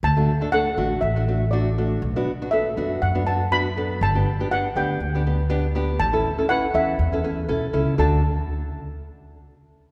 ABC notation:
X:1
M:4/4
L:1/16
Q:"Swing 16ths" 1/4=121
K:D
V:1 name="Steel pan"
a4 f4 e4 d3 z | z4 e4 f2 a2 b3 z | a4 f2 g4 z6 | a4 f2 e6 z4 |
a2 z12 z2 |]
V:2 name="Nylon-string guitar"
z [A,DF] z [A,DA] [A,DA] z [A,DF]2 z [A,DF] [A,DF] z [A,DF] z [A,DF]2 | z [B,DF] z [B,DF] [B,DA] z [B,DF]2 z [B,DF] [B,DF] z [B,DF] z [B,DA]2 | z [B,DG] z [B,DG] [B,DG] z [B,DG]2 z [B,DG] [B,DG] z [B,DG] z [B,DG]2 | z [CEA] z [CEA] [CEB] z [CEA]2 z [CEA] [CEA] z [CEA] z [CEA]2 |
[DFA]2 z12 z2 |]
V:3 name="Upright bass" clef=bass
D,,2 z4 A,,,2 A,,,8 | B,,,2 z4 F,,2 F,,8 | G,,,2 z4 D,,2 D,,8 | A,,,2 z4 E,,2 E,,4 B,,,2 C,,2 |
D,,2 z12 z2 |]